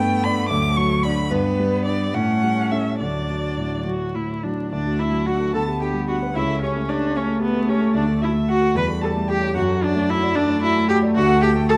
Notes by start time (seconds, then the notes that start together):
Already playing: G2 A3 B3 G5
0.00 B3
0.24 D4 D5 B5
0.49 D2 F#3 D6
0.77 F#3 C#6
1.03 D4 D5 B5
1.31 G2 G3 B3 B4
1.59 G3
1.85 D4 D5
2.14 A2 A3 C#4 F#5
2.43 G3
2.71 C#4 A4 E5
3.00 D2 F#3 D4 D5
3.29 F#3
3.58 A2
3.85 F#3 F#4
4.14 A2 E4
4.43 F#3 D4
4.72 D2 A3 D4 D5
4.86 F#4
4.99 D4 E4 E5
5.12 F#3
5.26 D4 F#4 F#5
5.40 A4
5.53 D2 B3 A4 A5
5.67 G4
5.80 D4 G4 G5
5.94 G3
6.07 D4 F#4 F#5
6.23 B4
6.34 C#2 C#4 E4 E5
6.48 A4
6.62 C#4 G4 C#5
6.76 A3
6.89 D4 G4 D5
7.02 A4
7.15 A3 C#4 C#5
7.28 A4
7.40 B3 G4 B4
7.54 A3
7.68 C#4 G4 C#5
7.80 A4
7.94 D2 D4 D5
8.07 A4
8.21 E4 F#4 E5
8.34 A3
8.49 F#4 F#5
8.61 A4
8.74 E2 G3 B4 B5
8.88 A4
9.01 G4 A4 A5
9.15 A3
9.28 G4 G5
9.41 C#5
9.54 F#2 F#3 F#4 F#5
9.68 A4
9.83 D4 F#4 D5
9.95 A3
10.09 E4 F#4 E5
10.23 D5
10.34 A3 D4 D5
10.49 D5
10.62 E4 F#4 E5
10.77 A3
10.88 F#4 G4 G5
11.02 D5
11.16 D2 F#4 F#5
11.29 A4
11.42 F#4 G4 G5
11.55 A3
11.69 F#4 A4 A5